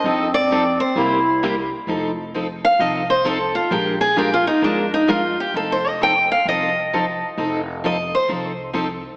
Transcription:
X:1
M:4/4
L:1/8
Q:"Swing" 1/4=131
K:Fmix
V:1 name="Steel-string acoustic guitar"
e d2 c3 z2 | z3 f e c A F | G _A (3G F E D E F G | (3A c e g f e4- |
e2 e c z4 |]
V:2 name="Clarinet"
C4 =E3 z | z8 | z8 | z8 |
z8 |]
V:3 name="Steel-string acoustic guitar"
[F,CEA] z [F,CEA] z [C,G,B,=EG] z [C,G,B,EG] z | [F,CEA] z [F,CEA] z [F,CEA] z [F,CEA] z | [F,_A,DFB] z [F,A,DFB] z [F,A,DFB] z [F,A,DFB] z | [F,CEA] z [F,CEA] z [F,CEA] z [F,CEA] z |
[F,CEA] z [F,CEA] z [F,CEA] z [F,CEA] z |]
V:4 name="Upright bass" clef=bass
F,,4 C,,4 | F,,,4 C,,4 | B,,,4 F,,4 | F,,,4 C,,4 |
F,,,4 C,,4 |]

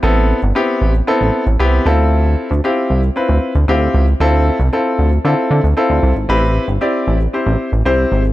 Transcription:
X:1
M:4/4
L:1/16
Q:1/4=115
K:Ddor
V:1 name="Grand piano"
[B,CEA]2 z2 [B,CEG]2 z2 [B,CEA]2 z2 [B,CEG]2 [CEFA]2- | [CEFA]2 z2 [CEFG]2 z2 [CEFB]2 z2 [CEFG]2 z2 | [CEFA]2 z2 [CEFA]2 z2 [CEFA]2 z2 [CEFA]2 z2 | [CEGB]2 z2 [CEGd]2 z2 [CEGc]2 z2 [CEGc]2 z2 |]
V:2 name="Analog synth bass" clef=bass
A,,,3 G,,, z2 A,,,2 z A,,, z A,,, C,,2 D,,2- | D,,3 D,, z2 C,,2 z D,, z D,, D,,2 ^C,,2 | D,,3 C,, z2 D,,2 D, z D, D,, z D,, C,, ^G,,, | A,,,3 G,,, z2 A,,,2 z A,,, z A,,, C,,2 ^G,,,2 |]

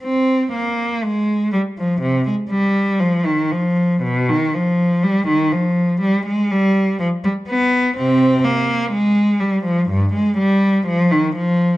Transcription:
X:1
M:4/4
L:1/16
Q:1/4=61
K:Fdor
V:1 name="Cello" clef=bass
C2 B,2 A,2 G, F, C, A, G,2 F, E, F,2 | =B,, E, F,2 G, E, F,2 G, A, G,2 F, G, =B,2 | [C,C]2 B,2 A,2 G, F, G,, A, G,2 F, E, F,2 |]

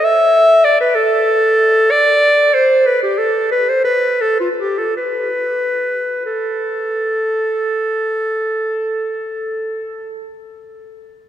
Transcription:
X:1
M:6/8
L:1/16
Q:3/8=51
K:Am
V:1 name="Clarinet"
e4 d B A6 | d4 c2 B G A2 B c | B2 A F G A B6 | A12- |
A12 |]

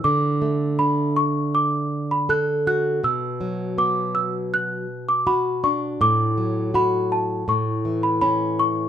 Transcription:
X:1
M:4/4
L:1/16
Q:1/4=81
K:D
V:1 name="Celesta"
d'4 b2 c'2 d'3 b f'2 f'2 | e'4 d'2 e'2 f'3 d' b2 c'2 | d'4 b2 a2 c'3 b b2 c'2 |]
V:2 name="Nylon-string guitar"
D,2 A,2 D8 A2 F2 | B,,2 F,2 B,8 F2 D2 | A,,2 F,2 F4 A,,2 E,2 C4 |]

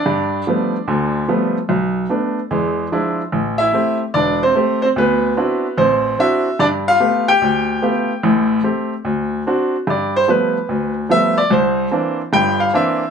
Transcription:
X:1
M:4/4
L:1/8
Q:"Swing" 1/4=147
K:Gmix
V:1 name="Grand piano"
[Dd]6- [Dd] z | z8 | z [Ee]2 z [Dd] [Cc]2 [Cc] | [B,B]4 [Cc]2 e2 |
[Dd] [Ff]2 [Gg]4- [Gg]- | [Gg] z6 z | d c B3 z e d | c3 z g f e2 |]
V:2 name="Grand piano"
G,,2 [F,G,A,B,] z [D,,D,]2 [F,G,A,B,] z | B,,,2 [A,B,D] z [E,,^G,]2 [F,G,DE] z | A,,,2 [A,CG] z E,,,2 [A,CG] z | D,,2 [CDE^F] z A,,,2 [CDEF] z |
G,,2 [A,B,FG] z D,,2 [A,B,FG] z | [A,,,A,,]2 [A,CG] z D,,2 [CD^F] z | G,,2 [F,G,A,B,] z D,,2 [F,G,A,B,] z | C,,2 [E,_B,CD] z [G,,,G,,]2 [E,B,CD] z |]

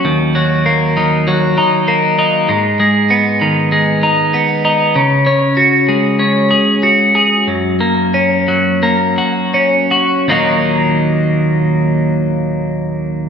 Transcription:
X:1
M:4/4
L:1/8
Q:1/4=96
K:Ebm
V:1 name="Clean electric guitar"
E,, G, B, E, G, E B, E | A,, A, C E, A, E C E | D, D G A, D A G A | G,, B, D G, B, G D G |
[E,,B,,E,G,B,E]8 |]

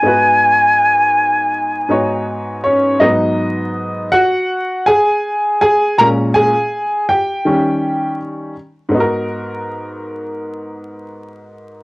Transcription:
X:1
M:4/4
L:1/8
Q:"Swing 16ths" 1/4=81
K:G#m
V:1 name="Flute"
g6- g z | z8 | z8 | z8 |]
V:2 name="Upright piano"
z6 z [Cc] | [Dd]3 [Ff]2 [Gg]2 [Gg] | [Aa] [Gg]2 [=G=g]3 z2 | z8 |]
V:3 name="Upright piano"
[G,,B,DFB]4- [G,,B,DFB] [G,,B,DFc]3 | [G,,F,B,]3 z4 z | [A,,G,C] z3 [D,=G,C]3 z | [G,,B,DFA]8 |]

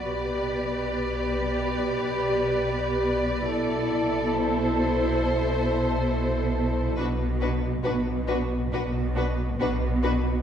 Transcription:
X:1
M:4/4
L:1/8
Q:1/4=69
K:Bphr
V:1 name="Vibraphone"
z4 z d3- | d3 z4 z | z8 |]
V:2 name="Violin section"
d8- | d2 c6 | B B B B B B B B |]
V:3 name="Violin section"
B8 | A8 | F F F F F F F F |]
V:4 name="Viola section"
G8 | E8 | D D D D D D D D |]
V:5 name="Cello section" clef=bass
B,,8 | B,,8 | B,,2 B,,2 B,,2 B,,2 |]
V:6 name="Double bass section" clef=bass
B,,,8 | B,,,8 | B,,,2 B,,,2 B,,,2 B,,,2 |]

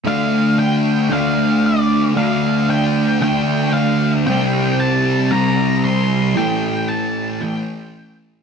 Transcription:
X:1
M:4/4
L:1/16
Q:1/4=114
K:Dm
V:1 name="Lead electric guitar"
f4 g4 f4 d3 z | f4 g4 g4 f3 z | g4 a4 b4 c'4 | g4 a4 g6 z2 |]
V:2 name="Distorted electric guitar" clef=bass
[D,A,D]8 [D,A,D]8 | [D,A,D]8 [D,A,D]8 | [C,G,C]8 [C,G,C]8 | [A,,E,A,]8 [A,,E,A,]8 |]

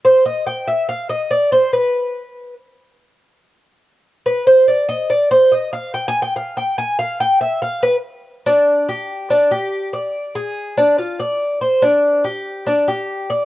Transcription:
X:1
M:4/4
L:1/8
Q:1/4=143
K:Gphr
V:1 name="Cuban tres"
c e g =e f _e d c | =B4 z4 | z4 =B c d e | d c e f (3g a g f g |
a f g =e f =B z2 | D2 G2 D G2 d- | d A2 D F d2 c | D2 G2 D G2 d |]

